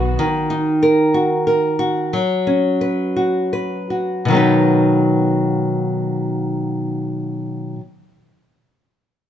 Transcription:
Already playing: B1 B2 D#3 F#3 B3 F#4 B4
0.19 D#3
0.50 D#4
0.83 A#4
1.14 F#4
1.47 A#4
1.79 F#4
2.13 F#3
2.47 C#4
2.81 B4
3.16 F#4
3.53 B4
3.90 F#4
4.25 B2 D#3
4.30 F#3 B3
4.35 D#4 B4

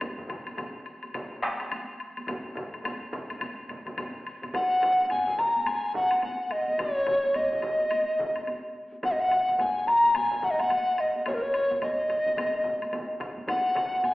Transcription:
0.01 taiko, taiko low-mid, taiko mid, taiko high, high woodblock
0.18 taiko low-mid, taiko mid
0.29 taiko low-mid, taiko mid, high woodblock
0.47 taiko high, high woodblock
0.58 taiko low-mid, taiko mid, taiko high, high woodblock
0.86 high woodblock
1.03 taiko high, high woodblock
1.14 taiko, taiko low-mid, taiko mid, taiko high, high woodblock
1.42 taiko rim, taiko, taiko high, high woodblock
1.60 taiko high, high woodblock
1.72 taiko high, high woodblock
2.00 high woodblock
2.17 taiko high, high woodblock
2.27 taiko, taiko low-mid, taiko mid, taiko high, high woodblock
2.56 taiko low-mid, taiko mid, high woodblock
2.74 taiko high, high woodblock
2.84 taiko low-mid, taiko mid, taiko high, high woodblock
3.13 taiko low-mid, taiko mid, high woodblock
3.30 taiko high, high woodblock
3.41 taiko low-mid, taiko mid, taiko high, high woodblock
3.69 taiko low-mid, taiko mid, taiko high, high woodblock
3.86 taiko low-mid, taiko mid, taiko high, high woodblock
3.97 taiko low-mid, taiko mid, taiko high, high woodblock
4.27 high woodblock
4.42 taiko low-mid, taiko mid, taiko high, high woodblock
4.54 F#5, taiko, taiko low-mid, taiko mid, taiko high, high woodblock
4.82 taiko low-mid, taiko mid, high woodblock
5.00 taiko high
5.10 G#5, taiko low-mid, taiko mid, taiko high, high woodblock
5.27 taiko low-mid, taiko mid
5.38 A#5, taiko low-mid, taiko mid, high woodblock
5.56 taiko high
5.66 G#5, taiko high, high woodblock
5.94 F#5, taiko low-mid, taiko mid
6.11 taiko high, high woodblock
6.22 F#5, taiko, taiko high, high woodblock
6.51 D#5, taiko, high woodblock
6.68 taiko high
6.78 C#5, taiko, taiko low-mid, taiko mid, taiko high, high woodblock
7.07 taiko low-mid, taiko mid, high woodblock
7.24 taiko high
7.34 D#5, taiko low-mid, taiko mid, taiko high, high woodblock
7.52 taiko low-mid, taiko mid
7.62 taiko low-mid, taiko mid, high woodblock
7.80 taiko high
7.91 taiko high, high woodblock
8.19 taiko low-mid, taiko mid
8.36 taiko high, high woodblock
8.47 taiko, taiko high, high woodblock
8.92 taiko high
9.03 F#5, taiko, taiko low-mid, taiko mid, taiko high, high woodblock
9.11 D#5
9.20 F#5
9.31 taiko low-mid, taiko mid, high woodblock
9.48 taiko low-mid, taiko mid, taiko high
9.59 G#5, taiko low-mid, taiko mid, taiko high, high woodblock
9.87 A#5, taiko low-mid, taiko mid, high woodblock
10.04 taiko low-mid, taiko mid, taiko high
10.14 G#5, taiko low-mid, taiko mid, taiko high, high woodblock
10.31 taiko low-mid, taiko mid
10.43 F#5, taiko low-mid, taiko mid
10.51 D#5
10.60 F#5, taiko high, high woodblock
10.70 taiko, taiko high, high woodblock
10.98 D#5, taiko, high woodblock
11.16 taiko high
11.26 C#5, taiko, taiko low-mid, taiko mid, taiko high, high woodblock
11.34 A#4
11.42 C#5
11.54 high woodblock
11.71 taiko low-mid, taiko mid, taiko high
11.81 D#5, taiko low-mid, taiko mid, taiko high, high woodblock
12.09 taiko low-mid, taiko mid, high woodblock
12.26 taiko low-mid, taiko mid, taiko high
12.37 taiko low-mid, taiko mid, taiko high, high woodblock
12.65 taiko low-mid, taiko mid, taiko high
12.82 taiko high, high woodblock
12.93 taiko low-mid, taiko mid, taiko high, high woodblock
13.20 taiko, taiko low-mid, taiko mid, high woodblock
13.37 taiko high
13.48 F#5, taiko, taiko low-mid, taiko mid, taiko high, high woodblock
13.75 taiko low-mid, taiko mid, high woodblock
13.93 taiko high
14.03 G#5, taiko low-mid, taiko mid, taiko high, high woodblock

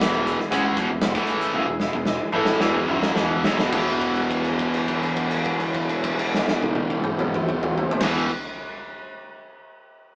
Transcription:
0.00 E1 E2 B2 E3 E4 G#4 B4 E5, snare, closed hi-hat
0.13 closed hi-hat
0.26 E4 G#4 B4 E5, closed hi-hat
0.40 muted overdriven electric guitar stroke, muted fingered electric bass stroke, muted distorted electric guitar stroke, snare
0.50 C#2 C#3 G#3 C#4 E4 G#4 B4 F#5, kick, closed hi-hat
0.77 E1 E2 B2 E4 G#4 B4 E5, kick, closed hi-hat
0.91 E1 E2 B2
1.01 E1 E2 B2 E4 G#4 B4 F#5, snare, closed hi-hat
1.15 A1 A2 E3 A3, kick, closed hi-hat
1.27 E4 G#4 B4 E5, closed hi-hat
1.41 closed hi-hat
1.53 F#1 F#2 C#3 E4 G#4 B4 E5, high tom
1.68 E1 E2 B2
1.79 E4 G#4 B4 E5, snare
1.93 E1 E2 B2, kick
2.05 E4 G#4 B4 E5, snare
2.32 A1 A2 E3 A3 E4 G#4 B4 E5, mid tom
2.45 snare
2.60 E1 E2 B2 E3 E4 G#4 B4 E5, snare
2.88 F#1 F#2 C#3 F#3 E4 G#4 B4 E5, mid tom
3.02 snare
3.16 E1 E2 B2 E3 E4 G#4 B4 E5 G#5, snare
3.43 B1 B2 F#3 E4 G#4 B4 E5, snare
3.58 E1 E2 B2, snare
3.70 E1 E2 B2 G#4 B4, kick, crash
3.74 E3 E5
4.01 kick, crash
4.16 crash
4.31 kick, crash
4.44 crash
4.59 kick, crash
4.74 crash
4.88 kick, crash
5.03 crash
5.16 kick, crash
5.31 crash
5.45 kick, crash
5.60 crash
5.74 kick, crash
5.89 crash
6.04 kick, crash
6.19 crash
6.35 snare
6.48 snare
6.62 high tom
6.75 high tom
6.90 high tom
7.04 mid tom
7.19 mid tom
7.34 mid tom
7.49 mid tom
7.63 mid tom
7.78 floor tom
7.91 floor tom
7.99 E1 E2 B2 G#4 B4, kick, snare, crash
8.03 E3 E5

